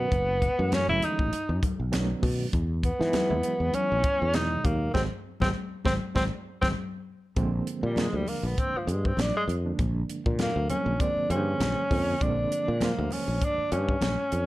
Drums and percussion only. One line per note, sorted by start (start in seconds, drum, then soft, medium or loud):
0.12 kick medium
0.12 closed hi-hat medium
0.42 kick medium
0.42 closed hi-hat medium
0.72 snare loud
0.72 closed hi-hat medium
0.72 high conga medium
1.02 closed hi-hat medium
1.02 muted conga soft
1.02 low conga medium
1.19 kick medium
1.33 closed hi-hat medium
1.33 muted conga soft
1.63 kick medium
1.63 closed hi-hat medium
1.63 muted conga soft
1.63 high conga medium
1.92 snare loud
1.92 closed hi-hat loud
1.92 high conga medium
2.23 kick medium
2.23 open hi-hat medium
2.53 kick medium
2.53 closed hi-hat medium
2.53 muted conga soft
2.83 kick medium
2.83 closed hi-hat medium
3.01 snare soft
3.13 snare loud
3.13 closed hi-hat medium
3.13 high conga loud
3.43 closed hi-hat medium
3.43 muted conga soft
3.73 closed hi-hat medium
3.73 muted conga soft
3.73 high conga medium
4.04 kick loud
4.04 closed hi-hat medium
4.34 snare loud
4.34 closed hi-hat medium
4.65 kick medium
4.65 closed hi-hat medium
4.94 kick medium
4.94 snare medium
4.94 high conga medium
5.40 kick medium
5.40 snare medium
5.40 high conga medium
5.85 kick medium
5.85 snare medium
5.85 high conga medium
6.15 kick medium
6.15 snare medium
6.15 high conga medium
6.62 kick medium
6.62 snare medium
6.62 high conga loud
7.36 kick medium
7.36 closed hi-hat medium
7.36 muted conga soft
7.67 closed hi-hat medium
7.67 muted conga soft
7.96 snare loud
7.96 closed hi-hat medium
7.96 high conga medium
8.27 open hi-hat medium
8.27 high conga medium
8.58 kick medium
8.58 closed hi-hat medium
8.88 closed hi-hat medium
9.05 kick medium
9.18 snare loud
9.18 closed hi-hat medium
9.18 high conga medium
9.48 closed hi-hat medium
9.48 muted conga soft
9.79 kick medium
9.79 closed hi-hat medium
10.09 closed hi-hat medium
10.09 muted conga soft
10.26 kick medium
10.39 snare medium
10.39 closed hi-hat medium
10.39 high conga loud
10.70 closed hi-hat medium
10.70 high conga medium
10.70 low conga medium
11.00 kick medium
11.00 closed hi-hat medium
11.30 closed hi-hat medium
11.60 snare loud
11.60 closed hi-hat medium
11.60 high conga medium
11.60 low conga medium
11.91 kick medium
11.91 open hi-hat medium
12.21 kick medium
12.21 closed hi-hat medium
12.51 closed hi-hat medium
12.51 muted conga soft
12.81 snare medium
12.81 closed hi-hat medium
12.81 high conga medium
13.11 open hi-hat medium
13.11 high conga medium
13.41 kick medium
13.41 closed hi-hat medium
13.41 muted conga soft
13.72 closed hi-hat medium
13.89 kick medium
14.01 snare loud
14.01 closed hi-hat medium
14.01 high conga medium
14.31 closed hi-hat medium
14.31 muted conga soft